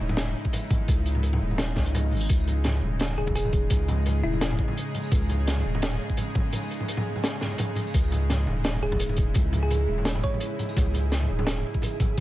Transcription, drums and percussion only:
0.09 mid tom medium
0.17 snare loud
0.17 closed hi-hat medium
0.27 mid tom medium
0.45 kick medium
0.53 closed hi-hat medium
0.53 mid tom medium
0.53 tambourine medium
0.70 kick loud
0.70 closed hi-hat medium
0.70 mid tom medium
0.88 kick loud
0.88 closed hi-hat medium
0.88 mid tom medium
1.06 closed hi-hat soft
1.15 mid tom medium
1.23 closed hi-hat medium
1.33 mid tom medium
1.51 mid tom medium
1.58 snare loud
1.58 closed hi-hat medium
1.76 kick medium
1.76 snare medium
1.76 mid tom medium
1.86 closed hi-hat medium
1.95 closed hi-hat medium
1.95 mid tom medium
2.12 closed hi-hat soft
2.12 mid tom soft
2.15 closed hi-hat soft
2.17 closed hi-hat soft
2.20 closed hi-hat soft
2.20 tambourine medium
2.29 kick loud
2.29 closed hi-hat medium
2.40 tambourine soft
2.47 closed hi-hat soft
2.47 mid tom soft
2.64 snare medium
2.64 closed hi-hat medium
2.64 mid tom medium
2.83 mid tom soft
3.00 snare loud
3.00 closed hi-hat medium
3.10 mid tom soft
3.27 kick medium
3.27 mid tom medium
3.35 closed hi-hat medium
3.35 tambourine medium
3.45 mid tom medium
3.53 kick loud
3.53 closed hi-hat soft
3.70 kick loud
3.70 closed hi-hat medium
3.70 mid tom soft
3.88 closed hi-hat medium
3.88 mid tom medium
4.06 closed hi-hat medium
4.06 mid tom medium
4.33 mid tom soft
4.41 snare loud
4.41 closed hi-hat medium
4.51 mid tom medium
4.59 kick medium
4.68 mid tom medium
4.77 closed hi-hat medium
4.94 closed hi-hat medium
4.94 mid tom soft
5.03 tambourine medium
5.12 kick loud
5.12 closed hi-hat loud
5.12 mid tom medium
5.22 tambourine soft
5.29 closed hi-hat soft
5.29 mid tom medium
5.47 snare medium
5.47 closed hi-hat medium
5.57 mid tom medium
5.75 mid tom medium
5.82 snare loud
5.82 closed hi-hat medium
5.93 mid tom medium
6.10 kick medium
6.17 closed hi-hat medium
6.17 mid tom medium
6.17 tambourine medium
6.35 kick loud
6.35 mid tom medium
6.53 closed hi-hat medium
6.53 mid tom medium
6.63 tambourine soft
6.70 closed hi-hat medium
6.80 mid tom medium
6.88 closed hi-hat medium
6.97 mid tom medium
7.16 mid tom medium
7.24 snare loud
7.24 closed hi-hat medium
7.41 snare medium
7.41 mid tom medium
7.47 mid tom soft
7.52 mid tom soft
7.56 closed hi-hat medium
7.56 mid tom soft
7.59 mid tom medium
7.76 closed hi-hat medium
7.76 mid tom medium
7.87 tambourine medium
7.94 kick loud
7.94 closed hi-hat medium
8.04 tambourine soft
8.12 closed hi-hat medium
8.12 mid tom medium
8.30 snare medium
8.30 closed hi-hat medium
8.30 mid tom medium
8.47 mid tom medium
8.64 snare loud
8.64 closed hi-hat medium
8.74 mid tom medium
8.92 kick medium
8.92 mid tom medium
8.99 closed hi-hat medium
8.99 tambourine medium
9.09 mid tom medium
9.17 kick loud
9.17 closed hi-hat medium
9.34 kick loud
9.34 closed hi-hat medium
9.34 mid tom soft
9.53 closed hi-hat medium
9.53 mid tom medium
9.71 closed hi-hat medium
9.71 mid tom medium
9.98 mid tom medium
10.05 snare loud
10.05 closed hi-hat medium
10.15 mid tom medium
10.24 kick medium
10.34 mid tom medium
10.40 closed hi-hat medium
10.59 closed hi-hat medium
10.59 mid tom medium
10.69 tambourine medium
10.77 kick loud
10.77 closed hi-hat medium
10.77 mid tom medium
10.86 tambourine soft
10.94 closed hi-hat medium
10.94 mid tom medium
11.12 snare medium
11.12 closed hi-hat medium
11.22 mid tom medium
11.39 mid tom medium
11.47 snare loud
11.47 closed hi-hat loud
11.58 mid tom medium
11.74 kick medium
11.82 closed hi-hat medium
11.82 mid tom medium
11.82 tambourine medium
12.00 kick loud
12.00 closed hi-hat medium
12.00 mid tom medium

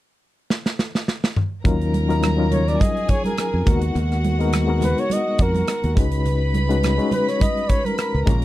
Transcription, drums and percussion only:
0.50 snare medium
0.66 snare medium
0.79 snare medium
0.95 snare medium
1.08 snare medium
1.24 snare medium
1.36 mid tom medium
1.65 kick loud
1.65 closed hi-hat medium
1.65 muted conga soft
1.65 low conga medium
1.81 closed hi-hat soft
1.94 closed hi-hat medium
1.94 muted conga soft
1.94 high conga medium
2.10 closed hi-hat soft
2.23 cross-stick medium
2.23 closed hi-hat medium
2.23 muted conga soft
2.23 high conga medium
2.52 closed hi-hat medium
2.52 muted conga soft
2.52 high conga medium
2.52 low conga medium
2.68 cross-stick soft
2.68 closed hi-hat soft
2.80 kick medium
2.80 closed hi-hat medium
2.80 muted conga soft
2.80 high conga medium
2.97 closed hi-hat soft
3.09 kick medium
3.09 closed hi-hat medium
3.09 muted conga soft
3.25 closed hi-hat soft
3.25 high conga medium
3.37 cross-stick medium
3.37 closed hi-hat medium
3.37 muted conga soft
3.66 kick medium
3.66 closed hi-hat medium
3.66 muted conga soft
3.66 low conga medium
3.82 closed hi-hat soft
3.95 closed hi-hat medium
3.95 low conga medium
4.12 cross-stick soft
4.12 closed hi-hat soft
4.24 closed hi-hat medium
4.24 muted conga soft
4.24 high conga medium
4.41 closed hi-hat soft
4.53 cross-stick medium
4.53 closed hi-hat medium
4.53 high conga medium
4.81 closed hi-hat medium
4.81 high conga medium
4.81 low conga medium
4.98 closed hi-hat soft
5.10 closed hi-hat medium
5.10 muted conga soft
5.10 high conga medium
5.39 kick medium
5.39 closed hi-hat medium
5.54 closed hi-hat soft
5.54 high conga medium
5.67 cross-stick medium
5.67 closed hi-hat medium
5.67 muted conga soft
5.84 closed hi-hat soft
5.97 kick medium
5.97 closed hi-hat medium
5.97 low conga medium
6.12 closed hi-hat medium
6.25 closed hi-hat medium
6.25 muted conga soft
6.25 low conga medium
6.54 closed hi-hat medium
6.54 high conga medium
6.71 closed hi-hat soft
6.83 cross-stick medium
6.83 closed hi-hat medium
6.83 muted conga soft
6.83 high conga medium
6.99 closed hi-hat soft
7.11 closed hi-hat medium
7.11 muted conga soft
7.11 high conga medium
7.11 low conga medium
7.29 cross-stick soft
7.29 closed hi-hat soft
7.40 kick medium
7.40 closed hi-hat medium
7.40 muted conga soft
7.40 high conga medium
7.57 closed hi-hat soft
7.69 kick medium
7.69 closed hi-hat medium
7.85 closed hi-hat soft
7.85 high conga medium
7.98 cross-stick medium
7.98 closed hi-hat medium
7.98 muted conga soft
8.27 kick loud
8.27 closed hi-hat medium
8.27 muted conga soft
8.27 low conga medium

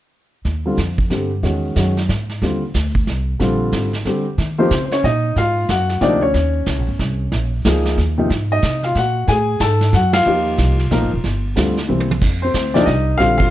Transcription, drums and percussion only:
0.45 brush sweep soft
0.45 kick soft
0.45 snare soft
0.77 kick soft
0.77 snare soft
0.77 hi-hat pedal soft
0.98 kick medium
1.10 kick soft
1.10 snare soft
1.43 brush sweep soft
1.43 kick soft
1.43 snare soft
1.76 kick soft
1.76 snare soft
1.76 hi-hat pedal medium
1.97 snare soft
2.09 kick soft
2.09 snare soft
2.09 hi-hat pedal soft
2.30 snare soft
2.42 brush sweep soft
2.42 kick soft
2.42 snare soft
2.74 kick soft
2.74 snare soft
2.74 hi-hat pedal medium
2.95 kick medium
3.07 kick soft
3.07 snare soft
3.40 brush sweep soft
3.40 kick soft
3.40 snare soft
3.72 kick soft
3.72 snare soft
3.72 hi-hat pedal soft
3.93 snare soft
4.05 kick soft
4.05 snare soft
4.38 brush sweep soft
4.38 kick soft
4.38 snare soft
4.71 kick soft
4.71 snare medium
4.71 hi-hat pedal medium
4.92 snare soft
5.04 kick soft
5.04 snare soft
5.36 brush sweep soft
5.36 kick soft
5.36 snare soft
5.69 kick soft
5.69 snare medium
5.69 hi-hat pedal medium
5.89 snare soft
6.01 kick soft
6.01 snare soft
6.34 brush sweep soft
6.34 kick soft
6.34 snare soft
6.66 kick soft
6.66 snare medium
6.66 hi-hat pedal medium
6.99 kick soft
6.99 snare soft
7.32 brush sweep soft
7.32 kick soft
7.32 snare soft
7.65 kick soft
7.65 snare medium
7.65 hi-hat pedal medium
7.85 snare soft
7.98 kick soft
7.98 snare soft
8.30 brush sweep soft
8.30 kick soft
8.30 snare soft
8.62 kick soft
8.62 snare medium
8.62 hi-hat pedal medium
8.83 snare soft
8.95 kick soft
8.95 snare soft
9.28 brush sweep soft
9.28 kick soft
9.28 snare soft
9.60 kick soft
9.60 snare medium
9.60 hi-hat pedal medium
9.81 snare soft
9.93 kick soft
9.93 snare soft
10.13 snare medium
10.13 ride medium
10.26 brush sweep soft
10.58 kick soft
10.58 snare medium
10.58 hi-hat pedal medium
10.79 snare soft
10.91 kick soft
10.91 snare soft
11.24 brush sweep soft
11.24 kick soft
11.24 snare soft
11.56 kick soft
11.56 snare medium
11.56 hi-hat pedal soft
11.77 snare soft
12.00 high tom medium
12.11 high tom medium
12.22 brush sweep soft
12.22 kick medium
12.22 snare soft
12.22 crash medium
12.54 kick soft
12.54 snare medium
12.54 hi-hat pedal medium
12.75 snare soft
12.87 kick soft
12.87 snare soft
13.19 brush sweep soft
13.19 kick soft
13.19 snare soft
13.40 kick medium
13.40 ride medium

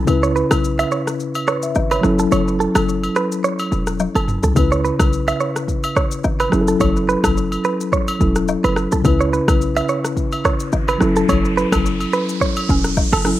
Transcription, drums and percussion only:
0.07 high agogo medium
0.07 shaker medium
0.23 shaker medium
0.36 shaker medium
0.51 cross-stick loud
0.51 high agogo medium
0.51 shaker medium
0.64 shaker medium
0.79 high agogo medium
0.79 shaker soft
0.91 shaker medium
1.07 cross-stick medium
1.07 shaker medium
1.20 shaker medium
1.34 high agogo medium
1.34 shaker soft
1.48 cross-stick medium
1.48 shaker medium
1.62 shaker loud
1.75 low woodblock medium
1.75 shaker medium
1.91 high agogo medium
1.91 shaker medium
2.03 cross-stick loud
2.03 shaker soft
2.19 shaker medium
2.32 high agogo medium
2.32 shaker medium
2.48 shaker medium
2.61 shaker medium
2.75 cross-stick loud
2.75 high agogo medium
2.75 shaker medium
2.89 shaker medium
3.04 high agogo medium
3.04 shaker soft
3.16 cross-stick medium
3.16 shaker medium
3.32 shaker medium
3.44 shaker medium
3.59 high agogo medium
3.59 shaker soft
3.72 shaker medium
3.87 cross-stick medium
3.87 shaker medium
3.99 high tom medium
3.99 low woodblock medium
3.99 shaker medium
4.15 high agogo medium
4.15 shaker medium
4.28 mid tom medium
4.28 shaker medium
4.43 floor tom medium
4.43 shaker loud
4.56 kick loud
4.56 high agogo medium
4.56 shaker medium
4.72 shaker medium
4.85 shaker medium
4.99 kick medium
4.99 cross-stick loud
4.99 high agogo medium
4.99 shaker medium
5.13 shaker medium
5.28 high agogo medium
5.28 shaker soft
5.40 shaker medium
5.56 cross-stick medium
5.56 shaker medium
5.68 kick medium
5.68 shaker medium
5.83 high agogo medium
5.83 shaker soft
5.96 kick loud
5.96 cross-stick medium
5.96 shaker medium
6.11 shaker loud
6.24 low woodblock medium
6.24 shaker medium
6.40 high agogo medium
6.40 shaker medium
6.52 cross-stick loud
6.52 shaker medium
6.67 shaker loud
6.80 kick loud
6.80 high agogo medium
6.80 shaker medium
6.96 shaker medium
7.09 shaker medium
7.24 kick medium
7.24 cross-stick loud
7.24 high agogo medium
7.24 shaker loud
7.37 shaker medium
7.52 high agogo medium
7.52 shaker soft
7.64 shaker medium
7.81 shaker loud
7.92 kick medium
7.92 shaker medium
8.08 high agogo medium
8.08 shaker soft
8.21 kick loud
8.21 shaker medium
8.36 cross-stick medium
8.36 shaker medium
8.48 low woodblock medium
8.48 shaker medium
8.64 high agogo medium
8.64 shaker medium
8.76 cross-stick loud
8.76 shaker medium
8.92 shaker loud
9.05 kick loud
9.05 high agogo medium
9.05 shaker medium
9.21 shaker medium
9.34 shaker medium
9.48 kick medium
9.48 cross-stick loud
9.48 high agogo medium
9.48 shaker medium
9.62 shaker medium
9.76 high agogo medium
9.76 shaker soft
9.89 shaker medium
10.05 cross-stick medium
10.05 shaker medium
10.17 kick medium
10.17 shaker medium
10.32 high agogo medium
10.32 shaker soft
10.45 kick medium
10.45 cross-stick medium
10.45 shaker medium
10.60 shaker loud
10.72 low woodblock medium
10.72 shaker medium
10.88 high agogo medium
10.88 shaker medium
11.01 cross-stick loud
11.01 shaker medium
11.16 shaker medium
11.29 kick loud
11.29 high agogo medium
11.29 shaker medium
11.45 shaker medium
11.58 shaker medium
11.72 kick medium
11.72 cross-stick loud
11.72 high agogo medium
11.72 shaker medium
11.86 shaker medium
12.01 high agogo medium
12.01 shaker soft
12.13 shaker medium
12.29 shaker loud
12.41 kick medium
12.41 shaker medium
12.56 high agogo medium
12.56 shaker soft
12.69 kick loud
12.69 shaker medium
12.84 cross-stick medium
12.84 shaker medium
12.97 kick loud
12.97 low woodblock medium
12.97 shaker medium
13.13 high agogo medium
13.13 shaker medium
13.25 cross-stick loud
13.25 shaker medium

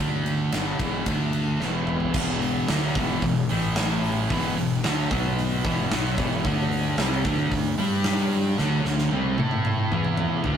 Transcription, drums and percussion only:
0.26 ride medium
0.52 snare loud
0.52 ride loud
0.80 kick loud
0.80 ride medium
1.06 kick loud
1.06 ride loud
1.33 ride medium
1.60 snare medium
1.87 mid tom medium
2.00 floor tom medium
2.14 kick loud
2.14 crash loud
2.41 open hi-hat medium
2.68 snare loud
2.68 open hi-hat medium
2.95 kick loud
2.95 open hi-hat medium
3.22 kick medium
3.22 open hi-hat medium
3.49 open hi-hat medium
3.76 snare loud
3.76 open hi-hat medium
3.90 snare soft
4.04 open hi-hat medium
4.30 kick medium
4.30 open hi-hat medium
4.57 open hi-hat medium
4.84 snare loud
4.84 open hi-hat medium
5.11 kick loud
5.11 open hi-hat medium
5.39 open hi-hat medium
5.65 kick loud
5.65 open hi-hat medium
5.91 snare loud
5.91 open hi-hat loud
6.05 snare soft
6.18 kick loud
6.18 open hi-hat medium
6.45 kick loud
6.45 open hi-hat medium
6.71 open hi-hat medium
6.98 snare loud
6.98 open hi-hat medium
7.25 kick loud
7.25 open hi-hat medium
7.51 kick medium
7.51 open hi-hat medium
7.78 open hi-hat medium
8.04 snare loud
8.04 open hi-hat loud
8.18 snare soft
8.31 open hi-hat medium
8.58 snare medium
8.85 snare medium
8.98 snare medium
9.11 high tom medium
9.38 high tom medium
9.51 mid tom medium
9.65 mid tom medium
9.92 mid tom loud
10.04 mid tom medium
10.17 mid tom loud
10.44 floor tom loud

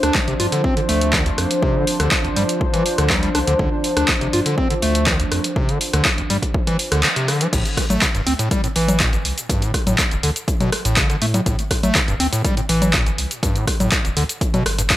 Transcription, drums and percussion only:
0.03 cross-stick medium
0.03 closed hi-hat medium
0.15 kick loud
0.15 clap loud
0.28 closed hi-hat soft
0.40 open hi-hat loud
0.52 closed hi-hat medium
0.64 kick loud
0.77 closed hi-hat soft
0.89 open hi-hat loud
1.01 closed hi-hat medium
1.13 kick loud
1.13 clap loud
1.26 closed hi-hat soft
1.38 cross-stick medium
1.38 open hi-hat loud
1.51 closed hi-hat medium
1.63 kick loud
1.87 open hi-hat loud
2.00 cross-stick medium
2.00 closed hi-hat medium
2.11 kick loud
2.11 clap loud
2.25 closed hi-hat soft
2.36 open hi-hat loud
2.49 closed hi-hat medium
2.61 kick loud
2.74 closed hi-hat medium
2.86 open hi-hat loud
2.98 cross-stick medium
2.98 closed hi-hat medium
3.10 kick loud
3.10 clap loud
3.23 closed hi-hat medium
3.35 cross-stick medium
3.35 open hi-hat loud
3.47 closed hi-hat medium
3.59 kick loud
3.84 open hi-hat loud
3.97 cross-stick medium
3.97 closed hi-hat medium
4.08 kick loud
4.08 clap loud
4.21 closed hi-hat soft
4.33 open hi-hat loud
4.46 closed hi-hat medium
4.58 kick loud
4.70 closed hi-hat medium
4.82 open hi-hat loud
4.95 closed hi-hat medium
5.06 kick loud
5.06 clap loud
5.20 closed hi-hat medium
5.32 cross-stick medium
5.32 open hi-hat medium
5.44 closed hi-hat medium
5.56 kick loud
5.69 closed hi-hat soft
5.81 open hi-hat loud
5.93 cross-stick medium
5.93 closed hi-hat medium
6.05 kick loud
6.05 clap loud
6.18 closed hi-hat soft
6.30 open hi-hat loud
6.42 kick medium
6.42 closed hi-hat medium
6.54 kick loud
6.67 closed hi-hat medium
6.79 open hi-hat loud
6.92 cross-stick medium
6.92 closed hi-hat medium
7.03 clap loud
7.16 closed hi-hat medium
7.28 cross-stick medium
7.28 open hi-hat medium
7.41 closed hi-hat medium
7.53 kick loud
7.53 closed hi-hat medium
7.53 crash loud
7.53 shaker medium
7.65 closed hi-hat soft
7.65 shaker soft
7.77 kick medium
7.77 cross-stick medium
7.77 open hi-hat loud
7.90 closed hi-hat medium
7.90 low conga medium
7.90 shaker medium
8.02 kick loud
8.02 clap loud
8.02 closed hi-hat medium
8.02 shaker medium
8.15 closed hi-hat soft
8.15 shaker soft
8.27 open hi-hat loud
8.39 closed hi-hat medium
8.39 shaker medium
8.51 kick loud
8.51 closed hi-hat medium
8.51 shaker medium
8.64 closed hi-hat soft
8.64 shaker soft
8.76 open hi-hat loud
8.88 closed hi-hat medium
8.88 low conga medium
8.88 shaker medium
9.00 kick loud
9.00 clap loud
9.00 closed hi-hat medium
9.00 shaker medium
9.13 closed hi-hat soft
9.13 shaker soft
9.25 open hi-hat loud
9.38 closed hi-hat medium
9.38 shaker medium
9.50 kick loud
9.50 closed hi-hat medium
9.50 shaker medium
9.62 closed hi-hat soft
9.62 shaker soft
9.74 kick medium
9.74 cross-stick medium
9.74 open hi-hat loud
9.87 closed hi-hat medium
9.87 low conga loud
9.87 shaker medium
9.98 kick loud
9.98 clap loud
9.98 closed hi-hat medium
9.98 shaker medium
10.11 closed hi-hat soft
10.11 shaker soft
10.23 open hi-hat loud
10.36 closed hi-hat medium
10.36 shaker medium
10.48 kick loud
10.48 closed hi-hat medium
10.48 shaker medium
10.61 closed hi-hat soft
10.61 low conga medium
10.61 shaker soft
10.72 cross-stick medium
10.72 open hi-hat loud
10.85 closed hi-hat medium
10.85 shaker medium
10.96 kick loud
10.96 clap loud
10.96 closed hi-hat medium
10.96 shaker medium
11.10 closed hi-hat soft
11.10 shaker soft
11.22 open hi-hat loud
11.34 closed hi-hat medium
11.34 low conga medium
11.34 shaker medium
11.46 kick loud
11.46 closed hi-hat medium
11.46 shaker medium
11.59 closed hi-hat soft
11.59 shaker soft
11.71 kick medium
11.71 cross-stick medium
11.71 open hi-hat loud
11.83 closed hi-hat medium
11.83 low conga loud
11.83 shaker medium
11.95 kick loud
11.95 clap loud
11.95 closed hi-hat medium
11.95 shaker medium
12.08 closed hi-hat soft
12.08 shaker soft
12.20 open hi-hat loud
12.33 closed hi-hat soft
12.33 shaker medium
12.45 kick loud
12.45 closed hi-hat medium
12.45 shaker medium
12.57 closed hi-hat soft
12.57 shaker soft
12.69 open hi-hat loud
12.82 closed hi-hat medium
12.82 low conga loud
12.82 shaker medium
12.93 kick loud
12.93 clap loud
12.93 closed hi-hat medium
12.93 shaker medium
13.06 closed hi-hat soft
13.06 shaker soft
13.18 open hi-hat loud
13.31 closed hi-hat medium
13.31 shaker medium
13.43 kick loud
13.43 closed hi-hat medium
13.43 shaker medium
13.56 closed hi-hat soft
13.56 shaker soft
13.67 kick medium
13.67 cross-stick medium
13.67 open hi-hat loud
13.80 closed hi-hat soft
13.80 low conga loud
13.80 shaker medium
13.92 kick loud
13.92 clap loud
13.92 closed hi-hat medium
13.92 shaker medium
14.05 closed hi-hat soft
14.05 shaker soft
14.17 open hi-hat loud
14.29 closed hi-hat soft
14.29 shaker medium
14.41 kick loud
14.41 closed hi-hat medium
14.41 shaker medium
14.54 closed hi-hat soft
14.54 low conga loud
14.54 shaker soft
14.66 cross-stick medium
14.66 open hi-hat loud
14.79 closed hi-hat medium
14.79 shaker medium
14.90 kick loud
14.90 clap loud
14.90 closed hi-hat medium
14.90 shaker medium

